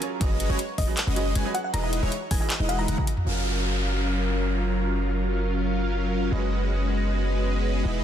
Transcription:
Already playing: fm electric piano A#5
0.01 grand piano F#3 C#4 F4 G#4 C#5, closed hi-hat
0.20 808-style bass F#1, grand piano F#3 F#4 G#4 B4 C#5 D#5, supersaw synth G#3 C#4 F#4 B4 D#5, digital synth lead D#5, kick, closed hi-hat
0.40 closed hi-hat
0.49 808-style bass F#1, grand piano F#3 F#4 G#4 B4 C#5 D#5, supersaw synth G#3 C#4 F#4 B4 C#5, digital synth lead C#5
0.59 closed hi-hat
0.78 808-style bass F#1, supersaw synth G#3 C#4 F#4 B4 D#5, digital synth lead D#5, fm electric piano D#5, kick, open hi-hat
0.87 grand piano F#3 F#4 G#4 B4 C#5 D#5
0.97 clap, closed hi-hat
1.07 808-style bass F#1, supersaw synth G#3 C#4 F#4 B4 D#5, digital synth lead D#5
1.15 grand piano F#3 F#4 G#4 B4 C#5 D#5, closed hi-hat
1.35 808-style bass F#1, supersaw synth G#3 C#4 F#4 B4 G#5, digital synth lead G#5, closed hi-hat
1.44 grand piano F#3 F#4 G#4 B4 C#5 D#5
1.54 grand piano F#3 F#4 G#4 B4 C#5 F#5, fm electric piano F#5, closed hi-hat
1.64 fm electric piano F#5
1.73 808-style bass E1, grand piano E3 E4 F#4 G#4 D#5, supersaw synth G#3 D#4 E4 B4 D#5, digital synth lead D#5, fm electric piano A#5, closed hi-hat
1.84 fm electric piano A#5
1.93 closed hi-hat
2.02 808-style bass E1, grand piano E3 E4 F#4 G#4 D#5, supersaw synth G#3 D#4 E4 B4 C#5, digital synth lead C#5
2.12 closed hi-hat
2.31 808-style bass E1, supersaw synth G#3 D#4 E4 B4 D#5, digital synth lead D#5, fm electric piano G#5, kick, open hi-hat
2.40 grand piano E3 E4 F#4 G#4 D#5, fm electric piano G#5
2.50 clap, closed hi-hat
2.60 808-style bass E1, supersaw synth G#3 D#4 E4 B4 D#5, digital synth lead D#5
2.68 grand piano E3 E4 F#4 G#4 D#5, fm electric piano F#5, closed hi-hat
2.78 grand piano E3 E4 F#4 G#4 F#5, fm electric piano A#5
2.88 808-style bass E1, supersaw synth G#3 D#4 E4 B4 F#5, digital synth lead F#5, closed hi-hat, high tom
2.97 grand piano E3 E4 F#4 G#4 D#5, kick, high tom
3.07 closed hi-hat
3.17 mid tom
3.25 808-style bass F#1, grand piano F#3 C#4 F4 G#4, analog synth pad F#3 C#4 F4 A#4, supersaw synth F#3 C#4 F4 A#4 F5, crash, downlifter
3.29 grand piano A#4
3.84 open hi-hat
5.37 open hi-hat
6.30 808-style bass F#1, grand piano F#3 F#4 G#4 B4 C#5 D#5, supersaw synth G#3 C#4 F#4 B4 D#5, analog synth pad G#3 B3 D#5
6.90 open hi-hat
7.83 808-style bass E1, grand piano E3 B3 F#4 G#4, analog synth pad E3 G#4, supersaw synth G#3 D#4 E4 B4 D#5
7.87 grand piano D#5

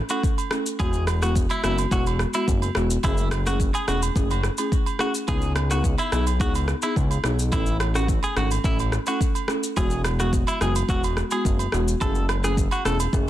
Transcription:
0.09 marimba A3 C#4 E4 A4, clean electric guitar F#4, high agogo, shaker
0.23 kick, shaker
0.38 high agogo, shaker
0.51 marimba A3 C#4 E4 A4, cross-stick, shaker
0.66 shaker
0.79 analog synth bass E1, marimba G#3 B3 E4 F#4, clean electric guitar G#4, kick, high agogo, shaker
0.93 shaker
1.07 cross-stick, high agogo, shaker
1.22 marimba G#3 B3 E4 F#4, clean electric guitar F#4, cross-stick, shaker
1.36 kick, shaker
1.50 clean electric guitar E4, high agogo, shaker
1.63 analog synth bass F#1, marimba G#3 B3 E4 F#4, clean electric guitar E4, cross-stick, shaker
1.78 high agogo, shaker
1.91 analog synth bass E1, marimba G#3 B3 E4 F#4, clean electric guitar F#4, kick, shaker
2.06 high agogo, shaker
2.19 cross-stick, shaker
2.33 marimba G#3 B3 E4 F#4, clean electric guitar E4, high agogo, shaker
2.48 analog synth bass F#1, kick, shaker
2.62 high agogo, shaker
2.75 analog synth bass E1, marimba G#3 B3 E4 F#4, cross-stick, shaker
2.90 shaker
3.03 analog synth bass F#1, marimba A3 C#4 E4 G#4, clean electric guitar E4, kick, high agogo, shaker
3.17 shaker
3.31 cross-stick, high agogo, shaker
3.46 marimba A3 C#4 E4 G#4, clean electric guitar F#4, cross-stick, shaker
3.60 kick, shaker
3.74 clean electric guitar G#4, high agogo, shaker
3.88 analog synth bass E1, marimba A3 C#4 E4 G#4, clean electric guitar F#4, cross-stick, shaker
4.03 high agogo, shaker
4.16 analog synth bass F#1, marimba A3 C#4 E4 G#4, kick, shaker
4.30 high agogo, shaker
4.43 cross-stick, shaker
4.58 marimba A3 C#4 E4 G#4, high agogo, shaker
4.72 kick, shaker
4.86 high agogo, shaker
4.99 marimba A3 C#4 E4 G#4, clean electric guitar F#4, cross-stick, shaker
5.15 shaker
5.28 analog synth bass C#2, marimba B3 D#4 E4 G#4, clean electric guitar G#4, kick, high agogo, shaker
5.42 shaker
5.56 cross-stick, high agogo, shaker
5.70 marimba B3 D#4 E4 G#4, clean electric guitar F#4, cross-stick, shaker
5.84 kick, shaker
5.98 clean electric guitar E4, high agogo, shaker
6.12 analog synth bass B1, marimba B3 D#4 E4 G#4, clean electric guitar E4, cross-stick, shaker
6.27 high agogo, shaker
6.40 analog synth bass C#2, marimba B3 D#4 E4 G#4, clean electric guitar F#4, kick, shaker
6.55 high agogo, shaker
6.68 cross-stick, shaker
6.82 marimba B3 D#4 E4 G#4, clean electric guitar E4, high agogo, shaker
6.96 analog synth bass C#2, kick, shaker
7.11 high agogo, shaker
7.24 analog synth bass B1, marimba B3 D#4 E4 G#4, cross-stick, shaker
7.39 shaker
7.52 analog synth bass A1, marimba A3 C#4 E4 A4, clean electric guitar E4, kick, high agogo, shaker
7.66 shaker
7.80 cross-stick, high agogo, shaker
7.95 marimba A3 C#4 E4 A4, clean electric guitar F#4, cross-stick, shaker
8.08 kick, shaker
8.23 clean electric guitar G#4, high agogo, shaker
8.36 analog synth bass G#1, marimba A3 C#4 E4 A4, clean electric guitar F#4, cross-stick, shaker
8.51 high agogo, shaker
8.64 analog synth bass A1, marimba A3 C#4 E4 A4, clean electric guitar E4, kick, shaker
8.79 high agogo, shaker
8.92 cross-stick, shaker
9.06 marimba A3 C#4 E4 A4, clean electric guitar F#4, high agogo, shaker
9.21 kick, shaker
9.35 high agogo, shaker
9.48 marimba A3 C#4 E4 A4, cross-stick, shaker
9.63 shaker
9.77 analog synth bass E1, marimba G#3 B3 E4 F#4, clean electric guitar G#4, kick, high agogo, shaker
9.90 shaker
10.04 cross-stick, high agogo, shaker
10.19 marimba G#3 B3 E4 F#4, clean electric guitar F#4, cross-stick, shaker
10.33 kick, shaker
10.47 clean electric guitar E4, high agogo, shaker
10.61 analog synth bass F#1, marimba G#3 B3 E4 F#4, clean electric guitar G#4, cross-stick, shaker
10.76 high agogo, shaker
10.89 analog synth bass E1, marimba G#3 B3 E4 F#4, clean electric guitar F#4, kick, shaker
11.04 high agogo, shaker
11.17 cross-stick, shaker
11.31 marimba G#3 B3 E4 F#4, clean electric guitar G#4, high agogo, shaker
11.45 analog synth bass F#1, kick, shaker
11.59 high agogo, shaker
11.72 analog synth bass E1, marimba G#3 B3 E4 F#4, cross-stick, shaker
11.88 shaker
12.01 analog synth bass F#1, marimba A3 C#4 E4 G#4, clean electric guitar A4, kick, high agogo, shaker
12.15 shaker
12.29 cross-stick, high agogo, shaker
12.43 marimba A3 C#4 E4 G#4, clean electric guitar G#4, cross-stick, shaker
12.57 kick, shaker
12.71 clean electric guitar F#4, high agogo, shaker
12.85 analog synth bass E1, marimba A3 C#4 E4 G#4, clean electric guitar A4, cross-stick, shaker
13.00 high agogo, shaker
13.13 analog synth bass F#1, marimba A3 C#4 E4 G#4, kick, shaker

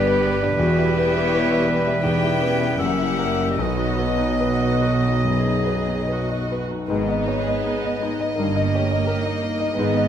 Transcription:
Already playing: double bass section G1, cello section G2, grand piano G2 D4 B4, french horn section G3 B4, bassoon G3, viola section B3 G4, clarinet G4, violin section B4 D5, oboe B4
0.07 grand piano D5
0.27 grand piano B4
0.43 grand piano D4
0.57 double bass section E1, cello section E2, grand piano E2, french horn section G3 B4, viola section B3 G4, clarinet F#4, violin section B4 E5
0.78 grand piano E4
0.94 clarinet E4
0.98 grand piano B4
1.17 grand piano E4
1.28 violin section C#5
1.34 grand piano B4
1.51 grand piano E5
1.65 violin section B4, grand piano B4
1.87 grand piano E4
2.02 grand piano E2, french horn section G3 B4, viola section B3 G4, clarinet D#4, violin section E5 G5
2.23 grand piano E4
2.40 clarinet C#4, grand piano B4
2.60 grand piano E4
2.77 double bass section F#1, cello section F#2, grand piano F#2, french horn section G3 A#4, viola section A#3 G4, oboe E5, violin section E5 F#5
2.98 grand piano E4
3.19 grand piano A#4
3.40 grand piano E4
3.59 grand piano B1, double bass section B1, cello section B2, french horn section D#3 B4, bassoon F#3, clarinet B3, viola section B3 F#4, violin section D#5, oboe D#5
3.77 grand piano D#4
3.98 grand piano B4
4.18 grand piano D#4
4.40 viola section F#4, grand piano B4
4.60 grand piano D#5
4.82 grand piano B4
5.04 grand piano D#4
5.24 grand piano F#2, viola section G#4
5.46 grand piano D#4
5.65 grand piano B4
5.88 grand piano D#4
6.07 viola section F#4, grand piano B4
6.30 grand piano D#5
6.52 grand piano B4
6.71 grand piano D#4
6.88 double bass section G#1, cello section G#2, grand piano G#2, french horn section D#3 B4, violin section G#3 D#5, viola section B3
7.07 violin section B3, grand piano D#5
7.25 violin section D#4, grand piano C#5
7.44 violin section G#4, grand piano D#5
7.63 violin section D#4, grand piano G#4
7.82 violin section B3, grand piano D#5
8.00 violin section G#3, grand piano D#4
8.18 violin section B3, grand piano D#5
8.35 double bass section G1, cello section G2, grand piano G2, french horn section D#3 A#4, violin section A#3
8.39 viola section A#3
8.52 violin section D#4
8.56 grand piano D#5
8.71 violin section G4, grand piano C#5
8.88 violin section A#4, grand piano D#5
9.06 violin section G4, grand piano A#4
9.22 violin section D#4, grand piano D#5
9.41 violin section A#3, grand piano D#4
9.59 violin section D#4, grand piano D#5
9.73 double bass section G#1, cello section G#2, french horn section D#3 B4, violin section G#3
9.78 grand piano G#2, viola section B3
9.94 violin section B3, grand piano D#5

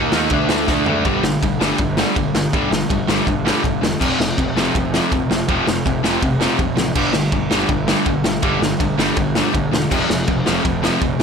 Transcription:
Already playing: picked electric bass D#2, distorted electric guitar D#3 A#3 D#4
0.12 picked electric bass D#2, distorted electric guitar D#3 A#3 D#4, snare
0.30 picked electric bass D2, distorted electric guitar D3 A3 D4, kick, ride
0.49 picked electric bass D2, distorted electric guitar D3 A3 D4, snare
0.67 picked electric bass D2, distorted electric guitar D3 A3 D4, kick, snare
0.86 picked electric bass D2, distorted electric guitar D3 A3 D4, floor tom
1.05 picked electric bass G1, distorted electric guitar G2 D3 G3, kick, ride
1.23 picked electric bass G1, distorted electric guitar G2 D3, snare
1.42 picked electric bass G1, distorted electric guitar G2 D3, kick, ride
1.59 picked electric bass G1, distorted electric guitar G2 D3 G3, snare
1.78 picked electric bass G1, distorted electric guitar G2 D3, kick, ride
1.97 distorted electric guitar G2 D3 G3, snare
2.16 picked electric bass G1, distorted electric guitar G2 D3, kick, ride
2.33 picked electric bass G1, distorted electric guitar G2 D3, snare
2.53 picked electric bass G1, distorted electric guitar G2 D3 G3, kick, ride
2.71 picked electric bass G1, distorted electric guitar G2 D3, snare
2.90 picked electric bass G1, distorted electric guitar G2 D3, kick, ride
3.08 picked electric bass G1, distorted electric guitar G2 D3 G3, snare
3.27 picked electric bass G1, distorted electric guitar G2 D3, kick, ride
3.45 distorted electric guitar G2 D3 G3, snare
3.64 picked electric bass G1, distorted electric guitar G2 D3, kick, ride
3.81 picked electric bass E1, distorted electric guitar G2 D3, snare
3.99 picked electric bass F1, distorted electric guitar F2 C3 F3, kick, crash
4.18 picked electric bass F1, distorted electric guitar F2 C3, snare
4.38 picked electric bass F1, distorted electric guitar F2 C3, kick, ride
4.56 picked electric bass F1, distorted electric guitar F2 C3 F3, snare
4.75 picked electric bass F1, distorted electric guitar F2 C3, kick, ride
4.94 distorted electric guitar F2 C3 F3, snare
5.12 picked electric bass F1, distorted electric guitar F2 C3, kick, ride
5.31 picked electric bass F1, distorted electric guitar F2 C3, snare
5.48 picked electric bass F1, distorted electric guitar F2 C3 F3, kick, ride
5.66 picked electric bass F1, distorted electric guitar F2 C3, snare
5.85 picked electric bass F1, distorted electric guitar F2 C3, kick, ride
6.03 picked electric bass F1, distorted electric guitar F2 C3 F3, snare
6.22 picked electric bass F1, distorted electric guitar F2 C3, kick, ride
6.40 distorted electric guitar F2 C3 F3, snare
6.59 picked electric bass F1, distorted electric guitar F2 C3, kick, ride
6.77 picked electric bass A1, distorted electric guitar F2 C3, snare
6.95 picked electric bass G1, distorted electric guitar G2 D3 G3, kick, crash
7.13 picked electric bass G1, distorted electric guitar G2 D3, snare
7.32 picked electric bass G1, distorted electric guitar G2 D3, kick, ride
7.51 picked electric bass G1, distorted electric guitar G2 D3 G3, snare
7.69 picked electric bass G1, distorted electric guitar G2 D3, kick, ride
7.87 distorted electric guitar G2 D3 G3, snare
8.06 picked electric bass G1, distorted electric guitar G2 D3, kick, ride
8.24 picked electric bass G1, distorted electric guitar G2 D3, snare
8.42 picked electric bass G1, distorted electric guitar G2 D3 G3, kick, ride
8.60 picked electric bass G1, distorted electric guitar G2 D3, snare
8.80 picked electric bass G1, distorted electric guitar G2 D3, kick, ride
8.98 picked electric bass G1, distorted electric guitar G2 D3 G3, snare
9.16 picked electric bass G1, distorted electric guitar G2 D3, kick, ride
9.35 distorted electric guitar G2 D3 G3, snare
9.53 picked electric bass G1, distorted electric guitar G2 D3, kick, ride
9.72 picked electric bass E1, distorted electric guitar G2 D3, snare
9.90 picked electric bass F1, distorted electric guitar F2 C3 F3, kick, crash
10.08 picked electric bass F1, distorted electric guitar F2 C3, snare
10.27 picked electric bass F1, distorted electric guitar F2 C3, kick, ride
10.46 picked electric bass F1, distorted electric guitar F2 C3 F3, snare
10.64 picked electric bass F1, distorted electric guitar F2 C3, kick, ride
10.82 distorted electric guitar F2 C3 F3, snare
11.00 picked electric bass F1, distorted electric guitar F2 C3, kick, ride
11.19 picked electric bass F1, distorted electric guitar F2 C3

